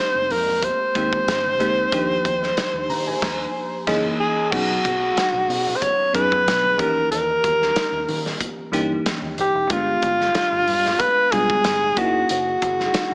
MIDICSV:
0, 0, Header, 1, 5, 480
1, 0, Start_track
1, 0, Tempo, 647948
1, 1429, Time_signature, 4, 2, 24, 8
1, 9734, End_track
2, 0, Start_track
2, 0, Title_t, "Alto saxophone"
2, 0, Program_c, 0, 65
2, 0, Note_on_c, 0, 72, 108
2, 232, Note_on_c, 0, 70, 95
2, 243, Note_off_c, 0, 72, 0
2, 476, Note_on_c, 0, 72, 102
2, 487, Note_off_c, 0, 70, 0
2, 2874, Note_off_c, 0, 72, 0
2, 3111, Note_on_c, 0, 68, 84
2, 3345, Note_on_c, 0, 66, 94
2, 3356, Note_off_c, 0, 68, 0
2, 4268, Note_on_c, 0, 72, 77
2, 4280, Note_off_c, 0, 66, 0
2, 4313, Note_on_c, 0, 73, 105
2, 4324, Note_off_c, 0, 72, 0
2, 4552, Note_off_c, 0, 73, 0
2, 4555, Note_on_c, 0, 71, 98
2, 5038, Note_on_c, 0, 70, 95
2, 5049, Note_off_c, 0, 71, 0
2, 5264, Note_off_c, 0, 70, 0
2, 5269, Note_on_c, 0, 70, 97
2, 6200, Note_off_c, 0, 70, 0
2, 6966, Note_on_c, 0, 67, 88
2, 7201, Note_on_c, 0, 65, 94
2, 7212, Note_off_c, 0, 67, 0
2, 8151, Note_on_c, 0, 71, 105
2, 8162, Note_off_c, 0, 65, 0
2, 8385, Note_on_c, 0, 68, 103
2, 8396, Note_off_c, 0, 71, 0
2, 8875, Note_on_c, 0, 66, 89
2, 8886, Note_off_c, 0, 68, 0
2, 9113, Note_off_c, 0, 66, 0
2, 9117, Note_on_c, 0, 66, 84
2, 9734, Note_off_c, 0, 66, 0
2, 9734, End_track
3, 0, Start_track
3, 0, Title_t, "FM electric piano"
3, 0, Program_c, 1, 5
3, 0, Control_c, 1, 64, 127
3, 0, Note_on_c, 1, 56, 75
3, 0, Note_on_c, 1, 58, 72
3, 0, Note_on_c, 1, 60, 70
3, 0, Note_on_c, 1, 63, 72
3, 0, Note_on_c, 1, 67, 88
3, 106, Note_off_c, 1, 56, 0
3, 107, Note_off_c, 1, 58, 0
3, 110, Note_off_c, 1, 60, 0
3, 110, Note_off_c, 1, 63, 0
3, 112, Note_off_c, 1, 67, 0
3, 701, Note_on_c, 1, 56, 77
3, 705, Note_on_c, 1, 58, 67
3, 708, Note_on_c, 1, 60, 69
3, 710, Note_on_c, 1, 67, 86
3, 712, Note_on_c, 1, 63, 69
3, 1129, Note_off_c, 1, 56, 0
3, 1131, Note_off_c, 1, 58, 0
3, 1132, Note_off_c, 1, 60, 0
3, 1133, Note_off_c, 1, 67, 0
3, 1134, Note_off_c, 1, 63, 0
3, 1179, Note_on_c, 1, 56, 80
3, 1181, Note_on_c, 1, 58, 77
3, 1182, Note_on_c, 1, 60, 71
3, 1186, Note_on_c, 1, 63, 78
3, 1186, Note_on_c, 1, 67, 84
3, 1396, Note_off_c, 1, 56, 0
3, 1397, Note_off_c, 1, 58, 0
3, 1397, Note_off_c, 1, 60, 0
3, 1399, Note_off_c, 1, 67, 0
3, 1400, Note_off_c, 1, 63, 0
3, 1425, Note_on_c, 1, 53, 86
3, 1428, Note_on_c, 1, 58, 79
3, 1429, Note_on_c, 1, 62, 85
3, 1432, Note_on_c, 1, 63, 79
3, 1432, Note_on_c, 1, 67, 100
3, 1438, Control_c, 1, 64, 0
3, 1555, Control_c, 1, 64, 127
3, 2146, Note_on_c, 1, 82, 69
3, 2268, Note_off_c, 1, 82, 0
3, 2274, Note_off_c, 1, 53, 0
3, 2275, Note_off_c, 1, 58, 0
3, 2275, Note_on_c, 1, 80, 67
3, 2276, Note_off_c, 1, 62, 0
3, 2278, Note_off_c, 1, 63, 0
3, 2278, Note_off_c, 1, 67, 0
3, 2380, Note_off_c, 1, 80, 0
3, 2866, Note_on_c, 1, 52, 105
3, 2866, Note_on_c, 1, 61, 99
3, 2867, Note_on_c, 1, 58, 104
3, 2867, Note_on_c, 1, 75, 102
3, 2870, Note_on_c, 1, 63, 103
3, 2876, Note_on_c, 1, 68, 101
3, 2881, Control_c, 1, 64, 0
3, 2997, Control_c, 1, 64, 127
3, 3034, Note_off_c, 1, 52, 0
3, 3034, Note_off_c, 1, 61, 0
3, 3035, Note_off_c, 1, 58, 0
3, 3035, Note_off_c, 1, 75, 0
3, 3037, Note_off_c, 1, 63, 0
3, 3040, Note_off_c, 1, 68, 0
3, 3345, Note_on_c, 1, 54, 73
3, 3349, Note_on_c, 1, 59, 69
3, 3349, Note_on_c, 1, 61, 68
3, 3353, Note_on_c, 1, 68, 85
3, 3355, Note_on_c, 1, 63, 68
3, 3358, Control_c, 1, 64, 0
3, 3474, Control_c, 1, 64, 127
3, 4194, Note_off_c, 1, 54, 0
3, 4196, Note_off_c, 1, 59, 0
3, 4196, Note_off_c, 1, 61, 0
3, 4198, Note_off_c, 1, 68, 0
3, 4199, Note_off_c, 1, 63, 0
3, 4541, Note_on_c, 1, 54, 73
3, 4542, Note_on_c, 1, 59, 69
3, 4547, Note_on_c, 1, 61, 67
3, 4548, Note_on_c, 1, 63, 72
3, 4552, Note_on_c, 1, 68, 84
3, 5019, Note_off_c, 1, 61, 0
3, 5020, Note_off_c, 1, 63, 0
3, 5021, Note_on_c, 1, 52, 82
3, 5023, Note_on_c, 1, 58, 70
3, 5026, Note_off_c, 1, 54, 0
3, 5026, Note_off_c, 1, 59, 0
3, 5028, Note_on_c, 1, 61, 74
3, 5029, Note_on_c, 1, 63, 75
3, 5031, Note_off_c, 1, 68, 0
3, 5031, Note_on_c, 1, 67, 82
3, 5040, Control_c, 1, 64, 0
3, 5190, Control_c, 1, 64, 127
3, 5872, Note_off_c, 1, 52, 0
3, 5873, Note_off_c, 1, 58, 0
3, 5876, Note_off_c, 1, 61, 0
3, 5876, Note_off_c, 1, 63, 0
3, 5877, Note_off_c, 1, 67, 0
3, 6459, Note_on_c, 1, 52, 88
3, 6463, Note_on_c, 1, 58, 83
3, 6463, Note_on_c, 1, 61, 82
3, 6467, Note_on_c, 1, 63, 85
3, 6471, Note_on_c, 1, 67, 100
3, 7100, Note_off_c, 1, 52, 0
3, 7102, Note_off_c, 1, 58, 0
3, 7102, Note_off_c, 1, 61, 0
3, 7104, Note_off_c, 1, 63, 0
3, 7106, Note_off_c, 1, 67, 0
3, 7182, Note_on_c, 1, 56, 78
3, 7185, Note_on_c, 1, 58, 55
3, 7188, Note_on_c, 1, 62, 71
3, 7188, Note_on_c, 1, 65, 72
3, 7191, Note_on_c, 1, 67, 84
3, 7201, Control_c, 1, 64, 0
3, 7232, Note_on_c, 1, 59, 70
3, 7239, Note_off_c, 1, 58, 0
3, 7340, Control_c, 1, 64, 127
3, 8033, Note_off_c, 1, 56, 0
3, 8035, Note_off_c, 1, 62, 0
3, 8036, Note_off_c, 1, 65, 0
3, 8037, Note_off_c, 1, 67, 0
3, 8058, Note_off_c, 1, 59, 0
3, 8383, Note_on_c, 1, 59, 71
3, 8385, Note_on_c, 1, 56, 72
3, 8389, Note_on_c, 1, 62, 68
3, 8391, Note_on_c, 1, 55, 85
3, 8392, Note_on_c, 1, 65, 70
3, 8862, Note_on_c, 1, 58, 82
3, 8865, Note_on_c, 1, 61, 69
3, 8867, Note_off_c, 1, 59, 0
3, 8868, Note_off_c, 1, 56, 0
3, 8869, Note_off_c, 1, 62, 0
3, 8870, Note_on_c, 1, 63, 76
3, 8871, Note_off_c, 1, 55, 0
3, 8871, Note_off_c, 1, 65, 0
3, 8872, Note_on_c, 1, 64, 74
3, 8876, Note_on_c, 1, 68, 86
3, 8879, Control_c, 1, 64, 0
3, 9028, Control_c, 1, 64, 127
3, 9713, Note_off_c, 1, 58, 0
3, 9714, Note_off_c, 1, 61, 0
3, 9716, Note_off_c, 1, 63, 0
3, 9717, Note_off_c, 1, 64, 0
3, 9719, Note_off_c, 1, 68, 0
3, 9734, End_track
4, 0, Start_track
4, 0, Title_t, "Fingered electric bass"
4, 0, Program_c, 2, 33
4, 114, Note_on_c, 2, 29, 89
4, 202, Note_off_c, 2, 29, 0
4, 222, Note_on_c, 2, 41, 88
4, 516, Note_off_c, 2, 41, 0
4, 703, Note_on_c, 2, 39, 90
4, 895, Note_off_c, 2, 39, 0
4, 936, Note_on_c, 2, 32, 86
4, 1178, Note_off_c, 2, 32, 0
4, 1178, Note_on_c, 2, 38, 77
4, 1371, Note_off_c, 2, 38, 0
4, 1427, Note_on_c, 2, 39, 105
4, 1617, Note_off_c, 2, 39, 0
4, 1666, Note_on_c, 2, 39, 93
4, 1856, Note_off_c, 2, 39, 0
4, 2027, Note_on_c, 2, 39, 96
4, 2135, Note_on_c, 2, 51, 88
4, 2146, Note_off_c, 2, 39, 0
4, 2330, Note_off_c, 2, 51, 0
4, 2389, Note_on_c, 2, 39, 99
4, 2556, Note_off_c, 2, 39, 0
4, 2867, Note_on_c, 2, 30, 96
4, 3035, Note_off_c, 2, 30, 0
4, 3351, Note_on_c, 2, 35, 104
4, 3540, Note_off_c, 2, 35, 0
4, 3591, Note_on_c, 2, 35, 97
4, 3780, Note_off_c, 2, 35, 0
4, 3948, Note_on_c, 2, 35, 91
4, 4040, Note_off_c, 2, 35, 0
4, 4060, Note_on_c, 2, 47, 80
4, 4253, Note_off_c, 2, 47, 0
4, 4553, Note_on_c, 2, 42, 91
4, 4784, Note_on_c, 2, 35, 88
4, 4795, Note_off_c, 2, 42, 0
4, 5032, Note_off_c, 2, 35, 0
4, 5032, Note_on_c, 2, 39, 82
4, 5221, Note_off_c, 2, 39, 0
4, 5265, Note_on_c, 2, 39, 104
4, 5456, Note_off_c, 2, 39, 0
4, 5512, Note_on_c, 2, 39, 101
4, 5700, Note_off_c, 2, 39, 0
4, 5868, Note_on_c, 2, 39, 93
4, 5960, Note_off_c, 2, 39, 0
4, 5987, Note_on_c, 2, 51, 94
4, 6177, Note_off_c, 2, 51, 0
4, 6457, Note_on_c, 2, 43, 80
4, 6651, Note_off_c, 2, 43, 0
4, 6828, Note_on_c, 2, 39, 86
4, 6919, Note_off_c, 2, 39, 0
4, 6941, Note_on_c, 2, 31, 81
4, 7047, Note_off_c, 2, 31, 0
4, 7072, Note_on_c, 2, 28, 90
4, 7162, Note_off_c, 2, 28, 0
4, 7188, Note_on_c, 2, 31, 105
4, 7378, Note_off_c, 2, 31, 0
4, 7425, Note_on_c, 2, 31, 99
4, 7616, Note_off_c, 2, 31, 0
4, 7793, Note_on_c, 2, 31, 96
4, 7882, Note_off_c, 2, 31, 0
4, 7907, Note_on_c, 2, 43, 96
4, 8097, Note_off_c, 2, 43, 0
4, 8386, Note_on_c, 2, 35, 91
4, 8577, Note_off_c, 2, 35, 0
4, 8630, Note_on_c, 2, 31, 84
4, 8820, Note_off_c, 2, 31, 0
4, 8864, Note_on_c, 2, 30, 88
4, 9055, Note_off_c, 2, 30, 0
4, 9112, Note_on_c, 2, 30, 104
4, 9301, Note_off_c, 2, 30, 0
4, 9347, Note_on_c, 2, 30, 96
4, 9538, Note_off_c, 2, 30, 0
4, 9734, End_track
5, 0, Start_track
5, 0, Title_t, "Drums"
5, 225, Note_on_c, 9, 46, 73
5, 233, Note_on_c, 9, 64, 65
5, 299, Note_off_c, 9, 46, 0
5, 307, Note_off_c, 9, 64, 0
5, 355, Note_on_c, 9, 64, 71
5, 430, Note_off_c, 9, 64, 0
5, 463, Note_on_c, 9, 36, 85
5, 464, Note_on_c, 9, 63, 53
5, 466, Note_on_c, 9, 42, 80
5, 537, Note_off_c, 9, 36, 0
5, 538, Note_off_c, 9, 63, 0
5, 540, Note_off_c, 9, 42, 0
5, 705, Note_on_c, 9, 42, 71
5, 706, Note_on_c, 9, 36, 83
5, 780, Note_off_c, 9, 36, 0
5, 780, Note_off_c, 9, 42, 0
5, 834, Note_on_c, 9, 36, 91
5, 836, Note_on_c, 9, 63, 66
5, 908, Note_off_c, 9, 36, 0
5, 910, Note_off_c, 9, 63, 0
5, 949, Note_on_c, 9, 42, 100
5, 951, Note_on_c, 9, 38, 114
5, 951, Note_on_c, 9, 62, 29
5, 1023, Note_off_c, 9, 42, 0
5, 1025, Note_off_c, 9, 38, 0
5, 1025, Note_off_c, 9, 62, 0
5, 1077, Note_on_c, 9, 62, 29
5, 1077, Note_on_c, 9, 63, 63
5, 1151, Note_off_c, 9, 62, 0
5, 1151, Note_off_c, 9, 63, 0
5, 1181, Note_on_c, 9, 64, 74
5, 1187, Note_on_c, 9, 42, 63
5, 1255, Note_off_c, 9, 64, 0
5, 1261, Note_off_c, 9, 42, 0
5, 1424, Note_on_c, 9, 42, 92
5, 1425, Note_on_c, 9, 36, 115
5, 1498, Note_off_c, 9, 42, 0
5, 1499, Note_off_c, 9, 36, 0
5, 1566, Note_on_c, 9, 62, 33
5, 1640, Note_off_c, 9, 62, 0
5, 1667, Note_on_c, 9, 36, 85
5, 1667, Note_on_c, 9, 42, 74
5, 1675, Note_on_c, 9, 63, 62
5, 1741, Note_off_c, 9, 36, 0
5, 1741, Note_off_c, 9, 42, 0
5, 1749, Note_off_c, 9, 63, 0
5, 1799, Note_on_c, 9, 38, 37
5, 1873, Note_off_c, 9, 38, 0
5, 1905, Note_on_c, 9, 42, 85
5, 1909, Note_on_c, 9, 38, 106
5, 1914, Note_on_c, 9, 63, 60
5, 1979, Note_off_c, 9, 42, 0
5, 1983, Note_off_c, 9, 38, 0
5, 1988, Note_off_c, 9, 63, 0
5, 2050, Note_on_c, 9, 62, 26
5, 2125, Note_off_c, 9, 62, 0
5, 2146, Note_on_c, 9, 46, 72
5, 2161, Note_on_c, 9, 64, 62
5, 2220, Note_off_c, 9, 46, 0
5, 2235, Note_off_c, 9, 64, 0
5, 2281, Note_on_c, 9, 64, 78
5, 2355, Note_off_c, 9, 64, 0
5, 2387, Note_on_c, 9, 36, 105
5, 2388, Note_on_c, 9, 49, 78
5, 2391, Note_on_c, 9, 38, 100
5, 2462, Note_off_c, 9, 36, 0
5, 2462, Note_off_c, 9, 49, 0
5, 2465, Note_off_c, 9, 38, 0
5, 2869, Note_on_c, 9, 36, 110
5, 2869, Note_on_c, 9, 49, 81
5, 2872, Note_on_c, 9, 38, 105
5, 2943, Note_off_c, 9, 36, 0
5, 2943, Note_off_c, 9, 49, 0
5, 2946, Note_off_c, 9, 38, 0
5, 3350, Note_on_c, 9, 49, 99
5, 3351, Note_on_c, 9, 36, 118
5, 3424, Note_off_c, 9, 49, 0
5, 3425, Note_off_c, 9, 36, 0
5, 3489, Note_on_c, 9, 62, 33
5, 3563, Note_off_c, 9, 62, 0
5, 3589, Note_on_c, 9, 63, 63
5, 3593, Note_on_c, 9, 36, 84
5, 3594, Note_on_c, 9, 42, 73
5, 3663, Note_off_c, 9, 63, 0
5, 3667, Note_off_c, 9, 36, 0
5, 3668, Note_off_c, 9, 42, 0
5, 3824, Note_on_c, 9, 62, 27
5, 3824, Note_on_c, 9, 63, 56
5, 3831, Note_on_c, 9, 42, 91
5, 3835, Note_on_c, 9, 38, 109
5, 3898, Note_off_c, 9, 62, 0
5, 3898, Note_off_c, 9, 63, 0
5, 3905, Note_off_c, 9, 42, 0
5, 3909, Note_off_c, 9, 38, 0
5, 3962, Note_on_c, 9, 62, 26
5, 4036, Note_off_c, 9, 62, 0
5, 4073, Note_on_c, 9, 64, 65
5, 4074, Note_on_c, 9, 46, 78
5, 4147, Note_off_c, 9, 64, 0
5, 4148, Note_off_c, 9, 46, 0
5, 4199, Note_on_c, 9, 64, 74
5, 4273, Note_off_c, 9, 64, 0
5, 4311, Note_on_c, 9, 36, 83
5, 4312, Note_on_c, 9, 62, 35
5, 4312, Note_on_c, 9, 63, 57
5, 4314, Note_on_c, 9, 42, 89
5, 4385, Note_off_c, 9, 36, 0
5, 4386, Note_off_c, 9, 62, 0
5, 4386, Note_off_c, 9, 63, 0
5, 4388, Note_off_c, 9, 42, 0
5, 4552, Note_on_c, 9, 36, 85
5, 4555, Note_on_c, 9, 42, 75
5, 4627, Note_off_c, 9, 36, 0
5, 4629, Note_off_c, 9, 42, 0
5, 4680, Note_on_c, 9, 63, 75
5, 4682, Note_on_c, 9, 36, 86
5, 4754, Note_off_c, 9, 63, 0
5, 4756, Note_off_c, 9, 36, 0
5, 4788, Note_on_c, 9, 62, 31
5, 4799, Note_on_c, 9, 42, 107
5, 4801, Note_on_c, 9, 38, 108
5, 4862, Note_off_c, 9, 62, 0
5, 4873, Note_off_c, 9, 42, 0
5, 4875, Note_off_c, 9, 38, 0
5, 4917, Note_on_c, 9, 63, 58
5, 4991, Note_off_c, 9, 63, 0
5, 5021, Note_on_c, 9, 64, 75
5, 5032, Note_on_c, 9, 36, 103
5, 5037, Note_on_c, 9, 42, 69
5, 5095, Note_off_c, 9, 64, 0
5, 5106, Note_off_c, 9, 36, 0
5, 5111, Note_off_c, 9, 42, 0
5, 5273, Note_on_c, 9, 42, 95
5, 5273, Note_on_c, 9, 62, 33
5, 5347, Note_off_c, 9, 42, 0
5, 5347, Note_off_c, 9, 62, 0
5, 5409, Note_on_c, 9, 62, 34
5, 5483, Note_off_c, 9, 62, 0
5, 5510, Note_on_c, 9, 63, 68
5, 5512, Note_on_c, 9, 36, 86
5, 5513, Note_on_c, 9, 42, 71
5, 5584, Note_off_c, 9, 63, 0
5, 5586, Note_off_c, 9, 36, 0
5, 5588, Note_off_c, 9, 42, 0
5, 5645, Note_on_c, 9, 38, 36
5, 5719, Note_off_c, 9, 38, 0
5, 5746, Note_on_c, 9, 62, 28
5, 5746, Note_on_c, 9, 63, 59
5, 5748, Note_on_c, 9, 42, 87
5, 5751, Note_on_c, 9, 38, 113
5, 5820, Note_off_c, 9, 62, 0
5, 5820, Note_off_c, 9, 63, 0
5, 5822, Note_off_c, 9, 42, 0
5, 5826, Note_off_c, 9, 38, 0
5, 5882, Note_on_c, 9, 62, 26
5, 5956, Note_off_c, 9, 62, 0
5, 5989, Note_on_c, 9, 46, 73
5, 5992, Note_on_c, 9, 64, 65
5, 6063, Note_off_c, 9, 46, 0
5, 6067, Note_off_c, 9, 64, 0
5, 6120, Note_on_c, 9, 38, 34
5, 6120, Note_on_c, 9, 64, 75
5, 6194, Note_off_c, 9, 38, 0
5, 6194, Note_off_c, 9, 64, 0
5, 6226, Note_on_c, 9, 36, 86
5, 6228, Note_on_c, 9, 42, 89
5, 6228, Note_on_c, 9, 63, 56
5, 6301, Note_off_c, 9, 36, 0
5, 6302, Note_off_c, 9, 42, 0
5, 6303, Note_off_c, 9, 63, 0
5, 6362, Note_on_c, 9, 62, 31
5, 6436, Note_off_c, 9, 62, 0
5, 6470, Note_on_c, 9, 42, 77
5, 6544, Note_off_c, 9, 42, 0
5, 6607, Note_on_c, 9, 63, 68
5, 6681, Note_off_c, 9, 63, 0
5, 6711, Note_on_c, 9, 42, 105
5, 6713, Note_on_c, 9, 38, 116
5, 6785, Note_off_c, 9, 42, 0
5, 6787, Note_off_c, 9, 38, 0
5, 6847, Note_on_c, 9, 63, 61
5, 6921, Note_off_c, 9, 63, 0
5, 6949, Note_on_c, 9, 42, 72
5, 6949, Note_on_c, 9, 64, 76
5, 7023, Note_off_c, 9, 42, 0
5, 7023, Note_off_c, 9, 64, 0
5, 7185, Note_on_c, 9, 42, 102
5, 7186, Note_on_c, 9, 36, 119
5, 7199, Note_on_c, 9, 62, 33
5, 7259, Note_off_c, 9, 42, 0
5, 7260, Note_off_c, 9, 36, 0
5, 7273, Note_off_c, 9, 62, 0
5, 7425, Note_on_c, 9, 42, 72
5, 7428, Note_on_c, 9, 36, 86
5, 7439, Note_on_c, 9, 63, 67
5, 7499, Note_off_c, 9, 42, 0
5, 7502, Note_off_c, 9, 36, 0
5, 7513, Note_off_c, 9, 63, 0
5, 7562, Note_on_c, 9, 38, 34
5, 7636, Note_off_c, 9, 38, 0
5, 7664, Note_on_c, 9, 42, 86
5, 7668, Note_on_c, 9, 38, 114
5, 7675, Note_on_c, 9, 62, 28
5, 7675, Note_on_c, 9, 63, 61
5, 7738, Note_off_c, 9, 42, 0
5, 7742, Note_off_c, 9, 38, 0
5, 7749, Note_off_c, 9, 62, 0
5, 7749, Note_off_c, 9, 63, 0
5, 7813, Note_on_c, 9, 62, 27
5, 7887, Note_off_c, 9, 62, 0
5, 7908, Note_on_c, 9, 46, 76
5, 7920, Note_on_c, 9, 64, 68
5, 7982, Note_off_c, 9, 46, 0
5, 7994, Note_off_c, 9, 64, 0
5, 8042, Note_on_c, 9, 38, 32
5, 8044, Note_on_c, 9, 64, 76
5, 8116, Note_off_c, 9, 38, 0
5, 8118, Note_off_c, 9, 64, 0
5, 8145, Note_on_c, 9, 42, 89
5, 8146, Note_on_c, 9, 36, 84
5, 8159, Note_on_c, 9, 62, 36
5, 8159, Note_on_c, 9, 63, 54
5, 8219, Note_off_c, 9, 42, 0
5, 8220, Note_off_c, 9, 36, 0
5, 8233, Note_off_c, 9, 62, 0
5, 8233, Note_off_c, 9, 63, 0
5, 8288, Note_on_c, 9, 62, 31
5, 8362, Note_off_c, 9, 62, 0
5, 8386, Note_on_c, 9, 42, 77
5, 8388, Note_on_c, 9, 36, 89
5, 8460, Note_off_c, 9, 42, 0
5, 8462, Note_off_c, 9, 36, 0
5, 8517, Note_on_c, 9, 36, 90
5, 8529, Note_on_c, 9, 63, 71
5, 8591, Note_off_c, 9, 36, 0
5, 8603, Note_off_c, 9, 63, 0
5, 8625, Note_on_c, 9, 42, 104
5, 8628, Note_on_c, 9, 38, 107
5, 8700, Note_off_c, 9, 42, 0
5, 8702, Note_off_c, 9, 38, 0
5, 8768, Note_on_c, 9, 62, 29
5, 8768, Note_on_c, 9, 63, 63
5, 8842, Note_off_c, 9, 62, 0
5, 8842, Note_off_c, 9, 63, 0
5, 8865, Note_on_c, 9, 42, 68
5, 8867, Note_on_c, 9, 36, 101
5, 8870, Note_on_c, 9, 64, 77
5, 8939, Note_off_c, 9, 42, 0
5, 8941, Note_off_c, 9, 36, 0
5, 8944, Note_off_c, 9, 64, 0
5, 9106, Note_on_c, 9, 42, 95
5, 9117, Note_on_c, 9, 62, 31
5, 9180, Note_off_c, 9, 42, 0
5, 9191, Note_off_c, 9, 62, 0
5, 9252, Note_on_c, 9, 62, 35
5, 9326, Note_off_c, 9, 62, 0
5, 9348, Note_on_c, 9, 42, 76
5, 9350, Note_on_c, 9, 36, 85
5, 9355, Note_on_c, 9, 63, 66
5, 9422, Note_off_c, 9, 42, 0
5, 9424, Note_off_c, 9, 36, 0
5, 9429, Note_off_c, 9, 63, 0
5, 9481, Note_on_c, 9, 38, 37
5, 9555, Note_off_c, 9, 38, 0
5, 9586, Note_on_c, 9, 42, 92
5, 9590, Note_on_c, 9, 38, 109
5, 9593, Note_on_c, 9, 63, 57
5, 9660, Note_off_c, 9, 42, 0
5, 9664, Note_off_c, 9, 38, 0
5, 9667, Note_off_c, 9, 63, 0
5, 9734, End_track
0, 0, End_of_file